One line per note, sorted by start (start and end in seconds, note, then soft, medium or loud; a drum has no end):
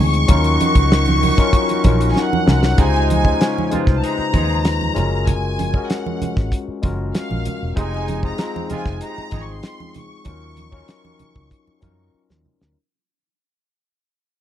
0.00 0.25 D2 medium
0.00 0.30 G#3 medium
0.00 0.31 C4 medium
0.00 0.29 D#4 medium
0.00 0.30 F4 medium
0.00 0.31 G#4 medium
0.00 2.16 C#6 loud
0.14 closed hi-hat soft
0.28 0.56 D#2 medium
0.28 2.43 D#3 medium
0.28 1.07 F#3 medium
0.28 1.08 C#4 medium
0.28 2.43 C#4 medium
0.28 1.08 D#4 medium
0.28 1.08 F4 medium
0.28 2.43 F#4 medium
0.28 1.09 A#4 loud
0.28 kick loud
0.28 closed hi-hat loud
0.28 muted conga soft
0.28 low conga medium
0.44 closed hi-hat medium
0.44 muted conga soft
0.61 closed hi-hat medium
0.61 high conga medium
0.75 1.30 C#2 medium
0.75 kick medium
0.75 closed hi-hat medium
0.92 snare loud
1.05 closed hi-hat soft
1.05 high conga medium
1.22 open hi-hat medium
1.22 high conga medium
1.22 low conga medium
1.37 1.72 F#3 medium
1.37 1.72 C#4 medium
1.37 1.72 D#4 medium
1.37 1.73 F4 medium
1.37 1.73 A#4 loud
1.37 kick medium
1.37 snare soft
1.37 closed hi-hat medium
1.53 kick loud
1.53 closed hi-hat medium
1.53 muted conga soft
1.69 closed hi-hat medium
1.69 muted conga soft
1.84 2.12 A#1 loud
1.84 2.30 F#3 medium
1.84 2.30 C#4 medium
1.84 2.30 D#4 medium
1.84 2.30 F4 medium
1.84 2.31 A#4 medium
1.84 kick medium
1.84 closed hi-hat medium
1.84 high conga medium
2.01 closed hi-hat medium
2.10 2.17 G#5 medium
2.16 2.79 F#5 medium
2.16 snare medium
2.16 muted conga soft
2.33 high conga medium
2.46 2.74 C2 medium
2.46 2.69 F#3 medium
2.46 2.70 C#4 medium
2.46 2.70 D#4 medium
2.46 2.70 F4 medium
2.46 2.71 A#4 medium
2.46 snare loud
2.46 high conga medium
2.46 low conga medium
2.63 snare medium
2.77 3.33 C#2 loud
2.77 3.36 C3 medium
2.77 3.12 C#3 medium
2.77 3.12 G#3 medium
2.77 3.36 G#3 medium
2.77 3.36 D#4 loud
2.77 3.12 D#4 medium
2.77 3.13 F4 medium
2.77 3.13 C5 loud
2.77 3.09 G#5 loud
2.77 kick loud
2.77 closed hi-hat loud
2.77 muted conga soft
2.77 low conga medium
2.96 muted conga soft
3.10 3.68 G#5 loud
3.10 closed hi-hat medium
3.10 high conga medium
3.24 3.58 G#3 medium
3.24 3.59 C#4 medium
3.24 3.59 D#4 medium
3.24 3.59 F4 medium
3.24 3.60 C5 medium
3.24 kick medium
3.40 3.65 G#2 medium
3.40 3.65 F3 medium
3.40 3.65 C#4 medium
3.40 snare loud
3.40 closed hi-hat medium
3.58 high conga medium
3.70 3.96 C3 medium
3.70 4.16 C#3 medium
3.70 4.16 G#3 medium
3.70 3.96 G#3 medium
3.70 4.17 D#4 medium
3.70 3.96 F4 medium
3.70 4.17 F4 medium
3.70 3.79 B4 medium
3.70 muted fingered electric bass stroke soft
3.70 closed hi-hat medium
3.70 high conga medium
3.70 low conga medium
3.81 4.21 C5 medium
3.87 4.01 C2 medium
3.87 kick medium
3.87 snare soft
3.97 4.03 A5 medium
4.02 4.27 C3 medium
4.02 4.28 G#3 medium
4.02 4.28 D#4 medium
4.02 5.28 A#5 loud
4.02 closed hi-hat medium
4.02 muted conga soft
4.19 muted fingered electric bass stroke medium
4.32 4.89 D#2 loud
4.32 4.58 F3 medium
4.32 4.93 G#3 medium
4.32 4.94 C#4 medium
4.32 4.59 D#4 medium
4.32 4.96 D#4 medium
4.32 4.95 F4 medium
4.32 4.58 G#4 medium
4.32 4.41 B4 medium
4.32 kick medium
4.32 closed hi-hat medium
4.32 high conga medium
4.42 5.00 C5 medium
4.65 snare loud
4.65 closed hi-hat medium
4.81 high conga medium
4.94 5.78 F#1 medium
4.94 5.57 G#3 medium
4.94 5.58 C#4 medium
4.94 5.58 F4 medium
4.94 5.59 F#4 medium
4.94 5.59 A#4 medium
4.94 closed hi-hat medium
4.94 high conga medium
4.94 low conga medium
5.27 5.90 G#5 loud
5.27 kick loud
5.27 closed hi-hat loud
5.27 muted conga soft
5.27 low conga medium
5.59 closed hi-hat medium
5.59 high conga medium
5.74 6.53 G#3 medium
5.74 6.53 C#4 medium
5.74 6.54 F#4 medium
5.74 6.54 G#4 medium
5.74 6.54 A#4 medium
5.74 kick medium
5.90 6.53 F#5 medium
5.90 snare loud
5.90 closed hi-hat medium
5.90 muted conga soft
6.06 high conga medium
6.22 muted fingered electric bass stroke soft
6.22 closed hi-hat medium
6.22 high conga medium
6.22 low conga medium
6.37 6.50 G#1 medium
6.37 kick medium
6.37 snare soft
6.52 kick medium
6.52 closed hi-hat medium
6.68 muted fingered electric bass stroke soft
6.82 7.11 F#1 medium
6.82 7.50 G#3 medium
6.82 7.50 C#4 medium
6.82 7.51 F4 medium
6.82 7.51 F#4 medium
6.82 7.52 A#4 medium
6.82 kick medium
6.82 closed hi-hat medium
6.82 high conga medium
7.15 7.73 F5 medium
7.15 snare loud
7.15 closed hi-hat medium
7.15 muted conga soft
7.31 7.44 A#1 medium
7.31 high conga medium
7.45 closed hi-hat medium
7.45 high conga medium
7.45 low conga medium
7.63 7.76 E1 medium
7.76 8.32 F1 loud
7.76 8.35 C3 medium
7.76 8.10 G#3 loud
7.76 8.35 G#3 medium
7.76 8.10 C4 medium
7.76 8.35 D#4 loud
7.76 8.11 D#4 medium
7.76 8.11 F4 medium
7.76 8.11 G#4 medium
7.76 8.21 G#5 medium
7.76 kick loud
7.76 closed hi-hat medium
7.76 muted conga soft
7.76 low conga medium
7.94 muted conga soft
8.08 closed hi-hat medium
8.08 high conga medium
8.22 8.56 G#3 medium
8.22 8.57 C4 medium
8.22 8.57 D#4 medium
8.22 8.58 F4 medium
8.22 8.58 G#4 medium
8.22 8.68 A#5 medium
8.22 kick medium
8.38 8.64 G#2 medium
8.38 8.64 F3 medium
8.38 8.64 C4 medium
8.38 snare loud
8.38 closed hi-hat medium
8.38 muted conga soft
8.56 muted conga soft
8.56 high conga medium
8.68 8.95 C3 medium
8.68 9.14 G#3 medium
8.68 8.95 G#3 medium
8.68 9.15 C4 medium
8.68 9.15 D#4 medium
8.68 8.95 F4 loud
8.68 9.15 F4 medium
8.68 9.16 G#4 medium
8.68 closed hi-hat medium
8.68 high conga medium
8.68 low conga medium
8.72 9.00 G#5 medium
8.72 muted fingered electric bass stroke soft
8.86 9.00 F1 medium
8.86 kick medium
8.86 snare soft
9.00 9.26 C3 medium
9.00 9.26 G#3 medium
9.00 9.26 D#4 medium
9.00 9.40 A#5 loud
9.00 closed hi-hat medium
9.00 muted conga soft
9.18 muted fingered electric bass stroke soft
9.18 muted conga soft
9.31 9.60 G#1 medium
9.31 9.57 F3 medium
9.31 9.99 G#3 medium
9.31 10.00 C4 medium
9.31 9.57 D#4 medium
9.31 10.00 D#4 medium
9.31 10.01 F4 medium
9.31 9.57 G#4 medium
9.31 10.01 G#4 medium
9.31 kick medium
9.31 closed hi-hat medium
9.31 high conga medium
9.43 9.49 C#6 medium
9.50 9.96 C6 loud
9.63 snare loud
9.63 closed hi-hat medium
9.80 muted conga soft
9.80 high conga medium
9.94 12.14 C#6 loud
9.94 closed hi-hat medium
9.94 high conga medium
9.94 low conga medium
10.24 10.81 D#2 loud
10.24 10.59 F#3 medium
10.24 10.60 C#4 medium
10.24 10.60 D#4 medium
10.24 10.60 F4 medium
10.24 10.61 A#4 loud
10.24 kick loud
10.24 closed hi-hat medium
10.24 muted conga soft
10.24 low conga medium
10.57 closed hi-hat medium
10.57 high conga medium
10.71 11.51 F#3 medium
10.71 11.52 C#4 medium
10.71 11.52 D#4 medium
10.71 11.52 F4 medium
10.71 11.53 A#4 loud
10.71 kick medium
10.88 snare loud
10.88 closed hi-hat medium
10.88 muted conga soft
11.05 high conga medium
11.19 muted fingered electric bass stroke soft
11.19 closed hi-hat medium
11.19 high conga medium
11.19 low conga medium
11.36 11.49 C#2 medium
11.36 kick medium
11.51 kick medium
11.51 closed hi-hat medium
11.67 muted fingered electric bass stroke soft
11.67 muted conga soft
11.80 12.10 F#2 medium
11.80 12.49 F#3 medium
11.80 12.49 C#4 medium
11.80 12.50 D#4 medium
11.80 12.51 F4 medium
11.80 12.51 A#4 medium
11.80 kick medium
11.80 closed hi-hat medium
11.80 high conga medium
12.30 12.44 D#2 medium
12.30 snare medium
12.30 high conga medium
12.46 high conga soft
12.46 low conga medium
12.61 12.75 D2 medium
12.61 snare medium